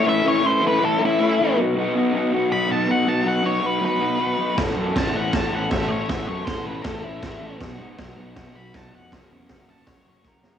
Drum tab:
CC |--------|--------|--------|x-x-x-x-|
SD |--------|--------|--------|o-o-o-o-|
BD |--------|--------|--------|o-o-o-o-|

CC |x-x-x-x-|x-x-x-x-|x-x-x---|
SD |o-o-o-o-|o-o-o-o-|o-o-o-oo|
BD |o-o-o-o-|o-o-o-o-|o-o-o-o-|